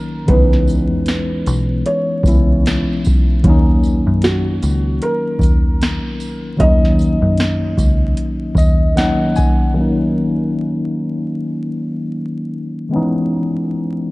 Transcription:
Already playing: tine electric piano D#3 F#3 A#3 C#4 D#4, felt piano A#4
0.26 fingered electric bass C#2, tine electric piano D#3 G#3 B3, felt piano B4, kick, closed hi-hat
0.31 tine electric piano E3 C#4 D#4
0.53 snare
0.67 tambourine, shaker
0.91 fingered electric bass E2
1.06 snare, closed hi-hat
1.46 fingered electric bass B1, closed hi-hat, tambourine, shaker
1.86 felt piano C#5, closed hi-hat
2.23 fingered electric bass C#2, tine electric piano E3 G#3 B3 C#4, kick, tambourine
2.28 tine electric piano E4, closed hi-hat, shaker
2.66 snare, closed hi-hat
3.04 kick, tambourine, shaker
3.43 fingered electric bass D#2, tine electric piano D#3 F#3 A#3, kick, closed hi-hat
3.48 tine electric piano C#4 D#4
3.83 tambourine, shaker
4.07 fingered electric bass F#2
4.22 felt piano F#4, snare, closed hi-hat
4.62 fingered electric bass C#2, closed hi-hat, tambourine, shaker
5.02 felt piano A#4, closed hi-hat
5.39 fingered electric bass D#2, kick, tambourine
5.43 closed hi-hat, shaker
5.82 snare, closed hi-hat
6.20 tambourine, shaker
6.57 fingered electric bass D#2, tine electric piano D#3 F#3 A#3, felt piano D#5, kick, closed hi-hat
6.62 tine electric piano C#4 D#4
6.85 snare
6.99 tambourine, shaker
7.22 fingered electric bass F#2
7.38 snare, closed hi-hat
7.77 fingered electric bass C#2, kick, tambourine, shaker
8.17 closed hi-hat
8.55 fingered electric bass D#2, tine electric piano D#5, kick, tambourine
8.59 closed hi-hat, shaker
8.96 tine electric piano D#3 F#3 A#3 C#4 D#4 F#5, snare, closed hi-hat
9.36 tine electric piano G#5, kick, tambourine, shaker
9.74 tine electric piano D#3 F#3 A#3
9.79 tine electric piano C#4 D#4
12.89 tine electric piano D#3 G#3 B3
12.94 tine electric piano E3 C#4 D#4

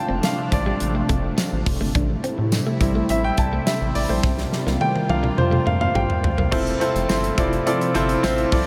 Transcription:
Already playing: analog synth pad C3 F3 A3 D4, grand piano F3 C4 E4 F5 G5 A5
0.09 analog synth bass F1, clean electric guitar C4
0.23 clean electric guitar A3, grand piano F5, snare, closed hi-hat, tambourine
0.52 analog synth bass A1, grand piano D5, muted clean electric guitar stroke, kick, closed hi-hat
0.66 clean electric guitar G3, grand piano D5
0.80 analog synth bass A1, muted clean electric guitar stroke, closed hi-hat
0.95 clean electric guitar A3
1.09 analog synth bass F1, clean electric guitar A3, kick, closed hi-hat
1.38 clean electric guitar F3, snare, closed hi-hat, tambourine
1.52 analog synth bass A1
1.66 analog synth bass F1, muted clean electric guitar stroke, kick, open hi-hat
1.81 analog synth bass G1, clean electric guitar A3
1.95 analog synth bass A1, analog synth pad C3 G3 A3 E4, clean electric guitar D4, kick, closed hi-hat
2.24 clean electric guitar C4, closed hi-hat
2.38 analog synth bass A2, muted clean electric guitar stroke
2.52 snare, closed hi-hat, tambourine
2.67 clean electric guitar A3
2.80 analog synth bass A1, grand piano G3 C4 E4, muted clean electric guitar stroke, kick, closed hi-hat
2.95 clean electric guitar A3
3.09 analog synth bass A1, clean electric guitar C4, grand piano E5, closed hi-hat
3.24 grand piano G5
3.37 analog synth bass C2, grand piano A5, muted clean electric guitar stroke, kick, closed hi-hat
3.53 clean electric guitar A3
3.67 clean electric guitar G3, grand piano E5, snare, closed hi-hat, tambourine
3.81 analog synth bass A1
3.95 analog synth bass A1, grand piano D5, muted clean electric guitar stroke, open hi-hat
4.09 analog synth bass A#1, clean electric guitar A3, grand piano C5
4.23 analog synth bass C2, analog synth pad A#3 F4, clean electric guitar C4, kick, snare
4.38 snare
4.52 muted clean electric guitar stroke, snare
4.67 analog synth bass C2, clean electric guitar A#3, snare
4.81 clean electric guitar A3, grand piano G5, high tom
4.96 high tom
5.09 analog synth bass C2, grand piano F3 A#3 D4 F5, muted clean electric guitar stroke, high tom
5.23 clean electric guitar G3, mid tom
5.37 analog synth bass F2, grand piano C5, muted clean electric guitar stroke, mid tom
5.51 clean electric guitar A3, mid tom
5.66 analog synth bass F2, clean electric guitar A3, grand piano F5, mid tom
5.81 grand piano F5, mid tom
5.95 analog synth bass A#1, clean electric guitar G3, grand piano G5, mid tom
6.10 floor tom
6.23 analog synth bass D2, muted clean electric guitar stroke, floor tom
6.38 analog synth bass C2, clean electric guitar A#3, floor tom
6.51 analog synth bass F1, analog synth pad C3 F3 A3 E4, grand piano C4 E4 F4 A4 C5, kick, crash
6.67 closed hi-hat
6.80 grand piano C4 E4 F4 A4 C5, closed hi-hat
6.95 analog synth bass F1, closed hi-hat
7.09 analog synth bass G1, grand piano C4 E4 F4 A4 C5, snare, tambourine
7.24 closed hi-hat
7.38 analog synth bass F1, grand piano C4 E4 F4 A4 D5, kick, closed hi-hat
7.53 closed hi-hat
7.66 grand piano C4 E4 F4 A4 D5, closed hi-hat
7.81 closed hi-hat
7.94 analog synth bass G1, grand piano C4 E4 F4 A4 C5, closed hi-hat
8.09 closed hi-hat
8.23 analog synth bass A1, grand piano C4 E4 F4 A4 C5, snare, tambourine
8.38 closed hi-hat
8.52 analog synth bass C2, grand piano C4 E4 F4 A4 D5, kick, open hi-hat

